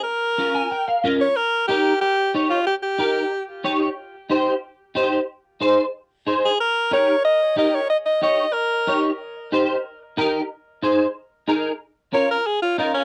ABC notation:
X:1
M:4/4
L:1/8
Q:1/4=184
K:Ebmix
V:1 name="Alto saxophone"
B6 z d | B2 G2 G2 z F | G G4 z3 | z8 |
z6 z A | B2 d2 e2 e d | e e e2 B3 z | z8 |
z8 | z2 d B A F E D |]
V:2 name="Clean electric guitar"
z2 [DFB] a g f [DFBe] d | z2 [EGB] z3 [EGd] z | z2 [EGB] z3 [EGd] z | z2 [EGc] z3 [EGc] z |
z2 [EAc] z3 [EAc] z | z2 [EGB] z3 [EGB] z | z2 [EGd] z3 [EGd] z | z2 [EGc] z3 [EGB] z |
z2 [EAc] z3 [EAB] z | z2 [DFB] z3 [DFB] z |]